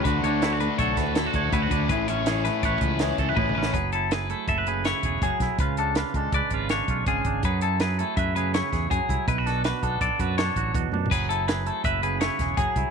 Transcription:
<<
  \new Staff \with { instrumentName = "Clean electric guitar" } { \time 5/4 \key fis \minor \tempo 4 = 163 b'8 cis''4 b'8 cis''8 b'8 a'4 b'8 b'8 | b'8 cis''4 b'8 cis''8 b'8 r4 b'8 b'8 | b'8 a'8 b'8 a'8 e''8 b'8 cis''4 gis'4 | b'8 a'8 b'8 a'8 d''8 b'8 cis''4 gis'4 |
b'8 a'8 b'8 a'8 e''8 b'8 cis''4 gis'4 | b'8 a'8 b'8 a'8 d''8 b'8 cis''4 r4 | b'8 a'8 b'8 a'8 e''8 b'8 cis''4 gis'4 | }
  \new Staff \with { instrumentName = "Clean electric guitar" } { \time 5/4 \key fis \minor << { fis'8 d'8 e'16 fis'8. a'4 e'16 fis'16 cis''8 e'16 fis'16 d'8 | gis'8 cis'8 gis'4 b'4 gis'8 a'16 b'16 gis'8 cis'8 | gis'8 e'8 gis'8 e'8 a'16 b'16 gis'8 e'8 gis'8 gis'8 e'8 | eis'8 d'8 eis'8 d'8 b'8 eis'8 d'8 eis'8 eis'8 d'8 |
gis'8 e'8 gis'8 e'8 b'8 gis'8 e'8 gis'8 gis'8 e'8 | e'16 fis'16 d'8 fis'8 d'8 a'8 fis'8 d'8 fis'8 fis'8 d'8 | gis'8 e'8 gis'8 e'8 b'8 gis'8 e'8 gis'8 gis'8 e'8 | } \\ { d4. a4 a,4. d4 | a,4. a4 e4. a,4 | fis4. a4 cis4. fis4 | cis4. gis4 cis4. cis4 |
fis4. a4 cis4. fis4 | b,4. b4 fis4. b,4 | fis4. a4 cis4. fis4 | } >> }
  \new Staff \with { instrumentName = "Overdriven electric guitar" } { \time 5/4 \key fis \minor <d a d' fis'>8 <a d' fis'>8 <d a d' fis'>8 <a d' fis'>4. <d a d' fis'>8 <a d' fis'>8 <d a d' fis'>8 <a d' fis'>8 | <a, e a cis' e'>8 <a cis' e'>8 <a, e a cis' e'>8 <a cis' e'>4. <e a cis' e'>8 <a cis' e'>8 <a, e a cis' e'>8 <a cis' e'>8 | r1 r4 | r1 r4 |
r1 r4 | r1 r4 | r1 r4 | }
  \new Staff \with { instrumentName = "Fingered electric bass" } { \clef bass \time 5/4 \key fis \minor d,8 d,4. b,,8 d,4 d,8 d,8 d,8 | a,,2 a,,8 cis,4 cis,8 a,,8 a,,8 | fis,,2 fis,,4. e,,8 fis,,16 r16 b,,16 r16 | cis,4. cis,8 cis,16 r16 gis,,4 b,,8 gis,,8 gis,,8 |
fis,2 fis,4. e,8 fis,16 r16 c,16 r16 | b,,4. b,,8 b,,16 r16 fis,4 a,,8 e,8 fis,8 | fis,,2 fis,,4. e,,8 fis,,16 r16 c,16 r16 | }
  \new DrumStaff \with { instrumentName = "Drums" } \drummode { \time 5/4 <hh bd>8 hh8 <hh sn>8 hh8 <hh bd>8 <hh bd sn>8 <hh sn>8 <hh bd>8 <hh bd>8 <hh bd>8 | <hh bd>8 hh8 <hh sn>8 <hh sn>8 <hh bd>8 <hh bd>8 <hh sn>8 <hh bd>8 \tuplet 3/2 { <bd tommh>8 toml8 sn8 } | <hh bd>8 hh8 <hh sn>8 hh8 <hh bd>8 hh8 <hh sn>8 <hh bd>8 <hh bd>8 <hh bd sn>8 | <hh bd>8 hh8 <hh sn>8 <hh bd>8 <hh bd>8 <hh bd>8 <hh sn>8 <hh bd>8 <hh bd>8 <hh bd>8 |
<hh bd>8 hh8 <hh sn>8 hh8 <hh bd>8 hh8 <hh sn>8 <hh bd sn>8 <hh bd>8 <hh bd>8 | <hh bd>8 <hh sn>8 <hh sn>8 <hh bd>8 <hh bd>8 <hh bd>8 <hh sn>8 <hh bd>8 \tuplet 3/2 { <hh bd>16 r16 r16 tommh16 r16 tomfh16 } | <cymc hh bd>8 hh8 <hh sn>8 hh8 <hh bd>8 hh8 <hh sn>8 <hh bd sn>8 <hh bd>8 <hh bd>8 | }
>>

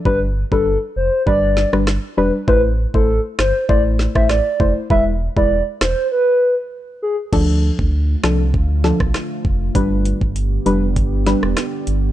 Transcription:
<<
  \new Staff \with { instrumentName = "Soft synth lead" } { \time 4/4 \key d \dorian \tempo 4 = 99 b'16 r8 a'8 r16 c''8 d''8. r8. b'16 r16 | b'16 r8 a'8 r16 c''8 d''16 r8 e''16 d''8. r16 | e''16 r8 d''8 r16 c''8 b'8. r8. gis'16 r16 | r1 |
r1 | }
  \new Staff \with { instrumentName = "Synth pluck" } { \time 4/4 \key d \dorian <g d' b'>16 r8 <g d' b'>16 r4 <g d' b'>8. <g d' b'>16 r8 <g d' b'>16 r16 | <a e' c''>16 r8 <a e' c''>16 r4 <a e' c''>8. <a e' c''>16 r8 <a e' c''>16 r16 | <gis e' b'>16 r8 <gis e' b'>16 r2. | <f d' a'>4 r8 <f d' a'>16 r8. <f d' a'>16 r4 r16 |
<g d' b'>4 r8 <g d' b'>16 r8. <g d' b'>16 r4 r16 | }
  \new Staff \with { instrumentName = "Ambient pad" } { \clef bass \time 4/4 \key d \dorian r1 | r1 | r1 | <d f a f'>1 |
<d g b g'>1 | }
  \new Staff \with { instrumentName = "Sub bass" } { \clef bass \time 4/4 \key d \dorian g,,8. g,,8 r16 f,,16 r16 g,,8. g,,8 r16 e,,16 r16 | a,,8. a,,8 r16 g,,16 r16 a,,8. a,,8 r16 f,,16 r16 | e,,8. e,,8 r16 e,,16 r2 r16 | d,8. d,8. c,8 d,8. b,,16 r8 f,,8 |
g,,8. g,,8. f,,8 g,,8. e,,16 r8 g,,8 | }
  \new DrumStaff \with { instrumentName = "Drums" } \drummode { \time 4/4 bd8. bd16 r4 bd8 sn16 ss16 <ss sn>4 | bd8. bd16 r8 <ss sn>8 bd8 sn16 <bd ss>16 <ss sn>8 bd8 | bd8. bd16 r8 <ss sn>8 r4 r4 | <cymc bd>8. bd16 r8 <ss sn>8 bd8 sn16 <bd ss>16 <ss sn>8 bd8 |
<hh bd>8 hh16 bd16 hh8 hh8 <hh bd>8 <hh sn>16 ss16 <hh ss sn>8 hh8 | }
>>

